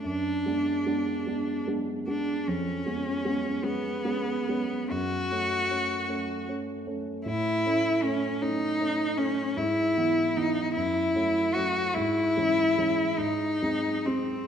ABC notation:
X:1
M:6/8
L:1/8
Q:3/8=51
K:F#m
V:1 name="Cello"
D4 z D | C3 B,3 | F4 z2 | [K:Alyd] E2 C D2 C |
E2 D E2 F | E3 D2 ^B, |]
V:2 name="Grand piano"
F,, [G,B,D] [G,B,D] [G,B,D] [G,B,D] [G,B,D] | ^E,, [G,B,C] [G,B,C] [G,B,C] [G,B,C] [G,B,C] | F,, [A,C] [A,C] [A,C] [A,C] [A,C] | [K:Alyd] A,, [A,C] [A,C] [A,C] [A,C] [A,C] |
G,, [E,B,E] [E,B,E] F,, [F,A,C] [F,A,C] | G,, [E,G,C] [E,G,C] G,, [G,^B,] [G,B,] |]